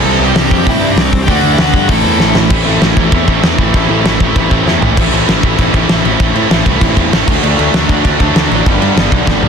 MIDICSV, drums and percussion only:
0, 0, Header, 1, 2, 480
1, 0, Start_track
1, 0, Tempo, 307535
1, 76, Time_signature, 4, 2, 24, 8
1, 14804, End_track
2, 0, Start_track
2, 0, Title_t, "Drums"
2, 555, Note_on_c, 9, 46, 65
2, 560, Note_on_c, 9, 38, 109
2, 711, Note_off_c, 9, 46, 0
2, 716, Note_off_c, 9, 38, 0
2, 800, Note_on_c, 9, 36, 85
2, 956, Note_off_c, 9, 36, 0
2, 1041, Note_on_c, 9, 36, 97
2, 1041, Note_on_c, 9, 46, 64
2, 1197, Note_off_c, 9, 36, 0
2, 1197, Note_off_c, 9, 46, 0
2, 1519, Note_on_c, 9, 46, 69
2, 1524, Note_on_c, 9, 38, 127
2, 1675, Note_off_c, 9, 46, 0
2, 1680, Note_off_c, 9, 38, 0
2, 1761, Note_on_c, 9, 36, 91
2, 1917, Note_off_c, 9, 36, 0
2, 1995, Note_on_c, 9, 46, 63
2, 1999, Note_on_c, 9, 36, 98
2, 2151, Note_off_c, 9, 46, 0
2, 2155, Note_off_c, 9, 36, 0
2, 2469, Note_on_c, 9, 46, 60
2, 2474, Note_on_c, 9, 38, 108
2, 2626, Note_off_c, 9, 46, 0
2, 2630, Note_off_c, 9, 38, 0
2, 2710, Note_on_c, 9, 36, 84
2, 2866, Note_off_c, 9, 36, 0
2, 2946, Note_on_c, 9, 46, 69
2, 2950, Note_on_c, 9, 36, 101
2, 3102, Note_off_c, 9, 46, 0
2, 3106, Note_off_c, 9, 36, 0
2, 3433, Note_on_c, 9, 38, 72
2, 3589, Note_off_c, 9, 38, 0
2, 3671, Note_on_c, 9, 38, 107
2, 3827, Note_off_c, 9, 38, 0
2, 3906, Note_on_c, 9, 49, 117
2, 3906, Note_on_c, 9, 57, 65
2, 3910, Note_on_c, 9, 36, 115
2, 4062, Note_off_c, 9, 49, 0
2, 4062, Note_off_c, 9, 57, 0
2, 4066, Note_off_c, 9, 36, 0
2, 4394, Note_on_c, 9, 57, 58
2, 4398, Note_on_c, 9, 38, 116
2, 4550, Note_off_c, 9, 57, 0
2, 4554, Note_off_c, 9, 38, 0
2, 4634, Note_on_c, 9, 36, 94
2, 4790, Note_off_c, 9, 36, 0
2, 4867, Note_on_c, 9, 57, 60
2, 4873, Note_on_c, 9, 36, 99
2, 5023, Note_off_c, 9, 57, 0
2, 5029, Note_off_c, 9, 36, 0
2, 5117, Note_on_c, 9, 36, 85
2, 5273, Note_off_c, 9, 36, 0
2, 5357, Note_on_c, 9, 57, 64
2, 5362, Note_on_c, 9, 38, 122
2, 5514, Note_off_c, 9, 57, 0
2, 5518, Note_off_c, 9, 38, 0
2, 5595, Note_on_c, 9, 36, 86
2, 5751, Note_off_c, 9, 36, 0
2, 5836, Note_on_c, 9, 57, 60
2, 5840, Note_on_c, 9, 36, 89
2, 5992, Note_off_c, 9, 57, 0
2, 5996, Note_off_c, 9, 36, 0
2, 6326, Note_on_c, 9, 57, 56
2, 6331, Note_on_c, 9, 38, 104
2, 6482, Note_off_c, 9, 57, 0
2, 6487, Note_off_c, 9, 38, 0
2, 6563, Note_on_c, 9, 36, 86
2, 6719, Note_off_c, 9, 36, 0
2, 6803, Note_on_c, 9, 36, 99
2, 6805, Note_on_c, 9, 57, 60
2, 6959, Note_off_c, 9, 36, 0
2, 6961, Note_off_c, 9, 57, 0
2, 7042, Note_on_c, 9, 36, 79
2, 7198, Note_off_c, 9, 36, 0
2, 7295, Note_on_c, 9, 38, 65
2, 7452, Note_off_c, 9, 38, 0
2, 7528, Note_on_c, 9, 43, 91
2, 7684, Note_off_c, 9, 43, 0
2, 7763, Note_on_c, 9, 36, 101
2, 7768, Note_on_c, 9, 49, 111
2, 7768, Note_on_c, 9, 57, 75
2, 7919, Note_off_c, 9, 36, 0
2, 7924, Note_off_c, 9, 49, 0
2, 7924, Note_off_c, 9, 57, 0
2, 8008, Note_on_c, 9, 57, 65
2, 8165, Note_off_c, 9, 57, 0
2, 8250, Note_on_c, 9, 57, 75
2, 8255, Note_on_c, 9, 38, 102
2, 8406, Note_off_c, 9, 57, 0
2, 8411, Note_off_c, 9, 38, 0
2, 8481, Note_on_c, 9, 36, 85
2, 8485, Note_on_c, 9, 57, 54
2, 8637, Note_off_c, 9, 36, 0
2, 8641, Note_off_c, 9, 57, 0
2, 8720, Note_on_c, 9, 36, 93
2, 8728, Note_on_c, 9, 57, 74
2, 8876, Note_off_c, 9, 36, 0
2, 8884, Note_off_c, 9, 57, 0
2, 8960, Note_on_c, 9, 36, 85
2, 8967, Note_on_c, 9, 57, 57
2, 9116, Note_off_c, 9, 36, 0
2, 9123, Note_off_c, 9, 57, 0
2, 9195, Note_on_c, 9, 57, 79
2, 9200, Note_on_c, 9, 38, 107
2, 9352, Note_off_c, 9, 57, 0
2, 9356, Note_off_c, 9, 38, 0
2, 9443, Note_on_c, 9, 57, 62
2, 9599, Note_off_c, 9, 57, 0
2, 9678, Note_on_c, 9, 36, 109
2, 9682, Note_on_c, 9, 57, 68
2, 9834, Note_off_c, 9, 36, 0
2, 9838, Note_off_c, 9, 57, 0
2, 9918, Note_on_c, 9, 57, 59
2, 10074, Note_off_c, 9, 57, 0
2, 10158, Note_on_c, 9, 57, 84
2, 10163, Note_on_c, 9, 38, 101
2, 10315, Note_off_c, 9, 57, 0
2, 10319, Note_off_c, 9, 38, 0
2, 10396, Note_on_c, 9, 36, 83
2, 10404, Note_on_c, 9, 57, 60
2, 10552, Note_off_c, 9, 36, 0
2, 10560, Note_off_c, 9, 57, 0
2, 10635, Note_on_c, 9, 36, 97
2, 10639, Note_on_c, 9, 57, 88
2, 10791, Note_off_c, 9, 36, 0
2, 10795, Note_off_c, 9, 57, 0
2, 10877, Note_on_c, 9, 36, 83
2, 10889, Note_on_c, 9, 57, 67
2, 11033, Note_off_c, 9, 36, 0
2, 11045, Note_off_c, 9, 57, 0
2, 11128, Note_on_c, 9, 57, 84
2, 11132, Note_on_c, 9, 38, 110
2, 11284, Note_off_c, 9, 57, 0
2, 11288, Note_off_c, 9, 38, 0
2, 11360, Note_on_c, 9, 36, 106
2, 11371, Note_on_c, 9, 57, 107
2, 11516, Note_off_c, 9, 36, 0
2, 11527, Note_off_c, 9, 57, 0
2, 11606, Note_on_c, 9, 57, 78
2, 11762, Note_off_c, 9, 57, 0
2, 11844, Note_on_c, 9, 57, 69
2, 12000, Note_off_c, 9, 57, 0
2, 12079, Note_on_c, 9, 57, 74
2, 12084, Note_on_c, 9, 38, 113
2, 12235, Note_off_c, 9, 57, 0
2, 12240, Note_off_c, 9, 38, 0
2, 12320, Note_on_c, 9, 36, 83
2, 12322, Note_on_c, 9, 57, 66
2, 12476, Note_off_c, 9, 36, 0
2, 12478, Note_off_c, 9, 57, 0
2, 12563, Note_on_c, 9, 36, 94
2, 12567, Note_on_c, 9, 57, 74
2, 12719, Note_off_c, 9, 36, 0
2, 12723, Note_off_c, 9, 57, 0
2, 12799, Note_on_c, 9, 57, 63
2, 12800, Note_on_c, 9, 36, 84
2, 12955, Note_off_c, 9, 57, 0
2, 12956, Note_off_c, 9, 36, 0
2, 13043, Note_on_c, 9, 57, 72
2, 13048, Note_on_c, 9, 38, 107
2, 13200, Note_off_c, 9, 57, 0
2, 13204, Note_off_c, 9, 38, 0
2, 13288, Note_on_c, 9, 57, 56
2, 13444, Note_off_c, 9, 57, 0
2, 13521, Note_on_c, 9, 57, 71
2, 13522, Note_on_c, 9, 36, 100
2, 13677, Note_off_c, 9, 57, 0
2, 13678, Note_off_c, 9, 36, 0
2, 13763, Note_on_c, 9, 57, 63
2, 13919, Note_off_c, 9, 57, 0
2, 14004, Note_on_c, 9, 57, 81
2, 14009, Note_on_c, 9, 38, 113
2, 14160, Note_off_c, 9, 57, 0
2, 14165, Note_off_c, 9, 38, 0
2, 14236, Note_on_c, 9, 36, 85
2, 14236, Note_on_c, 9, 57, 62
2, 14392, Note_off_c, 9, 36, 0
2, 14392, Note_off_c, 9, 57, 0
2, 14474, Note_on_c, 9, 36, 95
2, 14484, Note_on_c, 9, 38, 66
2, 14630, Note_off_c, 9, 36, 0
2, 14640, Note_off_c, 9, 38, 0
2, 14713, Note_on_c, 9, 48, 63
2, 14804, Note_off_c, 9, 48, 0
2, 14804, End_track
0, 0, End_of_file